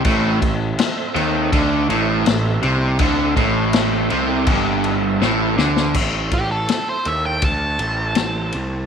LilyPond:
<<
  \new Staff \with { instrumentName = "Lead electric guitar" } { \time 4/4 \key a \minor \tempo 4 = 81 r1 | r1 | r8 g'16 a'8 c''16 e''16 g''16 a''2 | }
  \new Staff \with { instrumentName = "Tonewheel organ" } { \time 4/4 \key a \minor <e' a' c'' e''>8 r8 <c' a' c'' e''>4 r8 <e' a' c'' e''>4 r8 | <e' a' c'' e''>8 r8 <e' a' c'' g''>4 r8 <e' a' c'' e''>4 r8 | <e' a' c'' e''>8 r8 <e' a' c'' e''>4 r8 <e' a' c'' g''>4 r8 | }
  \new Staff \with { instrumentName = "Overdriven electric guitar" } { \clef bass \time 4/4 \key a \minor a,8 a,8 r8 dis8 d8 a,8 a,8 c8 | d8 a,4 c8 g,4 a,8 d8 | r1 | }
  \new Staff \with { instrumentName = "Picked electric bass" } { \clef bass \time 4/4 \key a \minor a,,8 a,,8 r8 dis,8 d,8 a,,8 a,,8 c,8 | d,8 a,,4 c,8 g,,4 a,,8 d,8 | a,,8 a,,8 r8 dis,8 d,8 a,,8 a,,8 c,8 | }
  \new DrumStaff \with { instrumentName = "Drums" } \drummode { \time 4/4 <cymc bd>8 <cymc bd>8 <cymc sn>8 cymc8 <cymc bd>8 cymc8 <cymc sn>8 cymc8 | <cymc bd>8 <cymc bd>8 <cymc sn>8 cymc8 <cymc bd>8 cymc8 sn8 sn16 sn16 | <cymc bd>8 <bd cymr>8 <cymr sn>8 cymr8 <bd cymr>8 cymr8 <cymr sn>8 cymr8 | }
>>